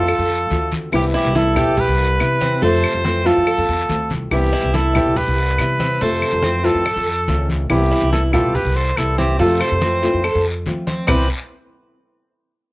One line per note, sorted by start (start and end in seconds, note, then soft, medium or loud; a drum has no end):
0.00 0.18 F2 medium
0.00 0.72 F4 medium
0.00 0.74 A4 loud
0.08 0.29 A4 medium
0.08 muted nylon-string guitar stroke medium
0.08 high conga soft
0.08 long guiro medium
0.08 claves medium
0.18 0.49 F2 loud
0.30 high conga soft
0.50 0.91 D2 loud
0.50 0.92 A3 medium
0.50 0.93 C4 medium
0.50 0.93 F4 medium
0.50 high conga medium
0.50 short guiro medium
0.72 high conga medium
0.72 short guiro medium
0.92 1.13 C2 loud
0.92 1.34 C3 medium
0.92 1.34 E3 medium
0.92 1.34 G3 medium
0.92 1.34 B3 medium
0.92 1.35 E4 medium
0.92 0.99 E4 medium
0.92 1.04 G4 loud
0.92 long guiro medium
0.92 claves medium
1.14 1.55 E4 medium
1.14 1.34 E4 medium
1.14 1.35 G4 medium
1.14 high conga soft
1.24 1.65 C2 loud
1.35 1.56 E3 medium
1.35 1.56 G3 medium
1.35 1.55 B3 medium
1.35 1.77 E4 medium
1.35 1.54 E4 medium
1.35 1.82 A4 loud
1.35 high conga loud
1.35 short guiro medium
1.55 1.76 E3 medium
1.55 1.76 G3 medium
1.55 1.77 B3 medium
1.55 1.76 E4 medium
1.55 1.98 G4 medium
1.55 low conga medium
1.55 short guiro medium
1.55 claves medium
1.67 1.87 C2 medium
1.77 2.62 G4 medium
1.77 2.64 B4 loud
1.77 muted nylon-string guitar stroke medium
1.77 high conga soft
1.77 low conga medium
1.77 long guiro medium
1.88 2.18 C2 loud
1.99 high conga soft
2.19 2.60 C3 loud
2.19 2.61 E3 soft
2.19 2.62 G3 soft
2.19 2.62 B3 medium
2.19 2.62 E4 medium
2.19 high conga soft
2.19 short guiro medium
2.19 claves medium
2.41 2.62 C4 medium
2.41 high conga medium
2.41 short guiro medium
2.61 2.83 F2 loud
2.61 3.04 C3 medium
2.61 3.04 A3 medium
2.61 3.04 C4 medium
2.61 3.04 F4 medium
2.61 3.22 A4 medium
2.61 3.28 C5 loud
2.61 high conga soft
2.61 long guiro medium
2.83 high conga soft
2.83 claves medium
2.94 3.34 F2 loud
3.04 3.25 E3 medium
3.04 3.25 A3 medium
3.04 3.46 C4 medium
3.04 3.24 C4 medium
3.04 3.24 F4 medium
3.04 high conga loud
3.04 short guiro medium
3.25 3.47 E3 medium
3.25 3.47 A3 medium
3.25 3.46 C4 medium
3.25 3.46 F4 medium
3.25 4.11 F4 medium
3.25 4.11 A4 loud
3.25 high conga soft
3.25 short guiro medium
3.37 3.57 F2 medium
3.47 3.68 A4 medium
3.47 muted nylon-string guitar stroke medium
3.47 high conga soft
3.47 long guiro medium
3.47 claves medium
3.58 3.68 F2 loud
3.68 3.88 E2 medium
3.68 high conga soft
3.89 4.08 D2 medium
3.89 4.31 A3 soft
3.89 4.32 C4 medium
3.89 4.32 F4 medium
3.89 high conga medium
3.89 short guiro medium
4.10 4.30 C2 medium
4.10 high conga medium
4.10 short guiro medium
4.31 4.52 C2 loud
4.31 4.73 C3 medium
4.31 4.73 E3 medium
4.31 4.74 G3 medium
4.31 4.74 B3 medium
4.31 4.71 E4 medium
4.31 4.74 E4 medium
4.31 4.76 G4 loud
4.31 long guiro medium
4.31 claves medium
4.53 4.94 E4 medium
4.53 high conga soft
4.63 5.04 C2 loud
4.74 4.95 E3 soft
4.74 4.95 G3 soft
4.74 4.95 B3 medium
4.74 5.16 E4 medium
4.74 4.94 E4 medium
4.74 5.19 A4 loud
4.74 high conga medium
4.74 short guiro medium
4.95 5.16 E3 medium
4.95 5.16 G3 medium
4.95 5.16 B3 medium
4.95 5.16 E4 medium
4.95 5.36 G4 medium
4.95 low conga medium
4.95 short guiro medium
4.95 claves medium
5.05 5.26 C2 medium
5.16 6.01 G4 medium
5.16 6.03 B4 loud
5.16 muted nylon-string guitar stroke medium
5.16 high conga soft
5.16 low conga medium
5.16 long guiro medium
5.27 5.57 C2 loud
5.38 high conga soft
5.58 5.99 C3 loud
5.58 6.00 E3 medium
5.58 6.01 G3 medium
5.58 6.01 B3 medium
5.58 6.01 E4 medium
5.58 high conga soft
5.58 short guiro medium
5.58 claves medium
5.79 6.00 C4 medium
5.79 high conga medium
5.79 short guiro medium
6.01 6.21 F2 loud
6.01 6.43 C3 medium
6.01 6.42 A3 medium
6.01 6.43 A3 medium
6.01 6.43 C4 medium
6.01 6.44 F4 medium
6.01 6.64 A4 medium
6.01 6.66 C5 loud
6.01 high conga soft
6.01 long guiro medium
6.22 high conga soft
6.22 claves medium
6.33 6.73 F2 loud
6.43 6.64 E3 soft
6.43 6.64 A3 soft
6.43 6.85 C4 medium
6.43 6.63 C4 medium
6.43 6.62 F4 medium
6.43 high conga loud
6.43 short guiro medium
6.64 6.84 E3 medium
6.64 6.85 A3 medium
6.64 6.85 C4 medium
6.64 6.84 F4 medium
6.64 7.49 F4 medium
6.64 7.49 A4 loud
6.64 high conga soft
6.64 short guiro medium
6.74 6.95 F2 medium
6.85 7.06 A4 medium
6.85 muted nylon-string guitar stroke medium
6.85 high conga soft
6.85 long guiro medium
6.85 claves medium
6.96 7.26 F2 loud
7.06 high conga soft
7.28 7.68 C#2 loud
7.28 7.70 A3 medium
7.28 7.70 C4 medium
7.28 7.70 F4 medium
7.28 high conga medium
7.28 short guiro medium
7.49 high conga medium
7.49 short guiro medium
7.70 7.90 C2 loud
7.70 8.12 C3 medium
7.70 8.12 E3 medium
7.70 8.12 G3 medium
7.70 8.12 B3 medium
7.70 8.10 E4 medium
7.70 8.12 E4 medium
7.70 8.10 G4 medium
7.70 high conga soft
7.70 long guiro medium
7.70 claves medium
7.91 8.32 E4 medium
7.91 high conga soft
8.02 8.42 C2 loud
8.12 8.33 E3 medium
8.12 8.33 G3 medium
8.12 8.33 B3 medium
8.12 8.18 E4 medium
8.12 8.32 E4 medium
8.12 8.22 A4 medium
8.12 high conga medium
8.12 short guiro medium
8.33 8.54 E3 medium
8.33 8.54 G3 medium
8.33 8.54 B3 medium
8.33 8.54 E4 medium
8.33 8.55 F4 medium
8.33 8.75 G4 medium
8.33 8.56 A4 medium
8.33 low conga medium
8.33 short guiro medium
8.33 claves medium
8.44 8.64 C2 medium
8.55 8.76 G4 medium
8.55 8.77 B4 medium
8.55 muted nylon-string guitar stroke medium
8.55 high conga soft
8.55 low conga medium
8.55 long guiro medium
8.65 8.95 C2 loud
8.76 8.97 A4 medium
8.76 8.99 C5 medium
8.76 high conga soft
8.97 9.37 C2 loud
8.97 9.38 E3 medium
8.97 9.39 G3 medium
8.97 9.39 B3 medium
8.97 9.17 E4 medium
8.97 9.39 E4 medium
8.97 9.20 A4 medium
8.97 high conga soft
8.97 short guiro medium
8.97 claves medium
9.18 9.39 C4 medium
9.18 9.39 E4 medium
9.18 9.39 G4 medium
9.18 high conga medium
9.18 short guiro medium
9.39 9.59 F2 loud
9.39 9.81 C3 medium
9.39 9.80 A3 medium
9.39 9.81 A3 medium
9.39 9.82 C4 medium
9.39 9.60 F4 medium
9.39 9.82 F4 medium
9.39 9.62 A4 loud
9.39 long guiro medium
9.60 10.45 A4 medium
9.60 10.45 C5 medium
9.60 high conga soft
9.60 claves medium
9.71 10.11 F2 loud
9.81 10.02 E3 soft
9.81 10.02 A3 soft
9.81 10.23 C4 medium
9.81 10.02 C4 medium
9.81 10.01 F4 medium
9.81 high conga medium
9.81 short guiro medium
10.03 10.23 E3 medium
10.03 10.23 A3 medium
10.03 10.23 C4 medium
10.03 10.23 F4 medium
10.03 high conga soft
10.03 short guiro medium
10.14 10.33 F2 medium
10.24 10.44 A4 medium
10.24 muted nylon-string guitar stroke medium
10.24 high conga soft
10.24 long guiro medium
10.24 claves medium
10.35 10.65 F2 loud
10.46 high conga soft
10.66 11.06 F3 loud
10.66 11.08 A3 soft
10.66 11.08 C4 medium
10.66 11.08 F4 medium
10.66 high conga medium
10.66 short guiro medium
10.87 11.06 C4 medium
10.87 high conga medium
10.87 short guiro medium
11.07 11.28 C2 loud
11.07 11.25 C3 medium
11.07 11.25 E3 medium
11.07 11.26 G3 medium
11.07 11.26 B3 medium
11.07 11.27 C4 medium
11.07 11.26 E4 medium
11.07 11.28 G4 medium
11.07 11.28 B4 loud
11.07 low conga loud
11.07 long guiro loud
11.07 claves medium